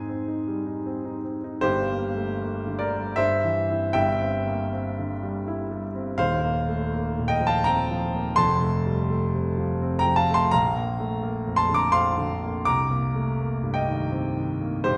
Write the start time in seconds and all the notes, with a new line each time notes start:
Already playing: G#2 C4 D#4 G#4 G#5
0.09 C4
0.28 D#4
0.48 G3
0.66 D#4
0.86 C4
1.05 D#4
1.24 C4
1.44 D#4
1.61 G1 G2 G4 C5
1.90 A#3
2.16 A3
2.42 A#3
2.67 D3
2.79 A#4 D5
2.93 G3
3.16 G2 C5 E5
3.44 E3
3.70 C4 E4
3.93 G1 G2 E5 G5
4.21 C4
4.47 A#3
4.72 C4
4.99 D3
5.23 G3
5.48 E4
5.71 G3
5.95 C4
6.18 D#1 D#2 C5 F5
6.44 A#3
6.68 A3
6.94 A#3
7.19 A#2
7.28 D#5 G5
7.40 F3
7.47 F5 A5
7.64 C4 G5 A#5
7.91 F3
8.14 A#3
8.36 F1 F2 A5 C6
8.62 A3
8.86 G3
9.10 A3
9.35 C3
9.58 F3
9.82 C4
9.99 G5 A#5
10.06 F3
10.16 F5 A5
10.30 A3
10.34 A5 C6
10.51 A#1 F5 A#5
10.77 A#3
11.00 A3
11.23 A#3
11.47 F2
11.56 A5 C6
11.69 D3
11.74 A#5 D6
11.92 C4 F5 C6
12.18 D3
12.44 A#3
12.65 C2 A#5 D6
12.91 A#3
13.15 A3
13.41 A#3
13.63 G2
13.74 D#5 G5
13.88 D#3
14.12 C4
14.36 D#3
14.61 A#3
14.84 D#1 D#2 G4 C5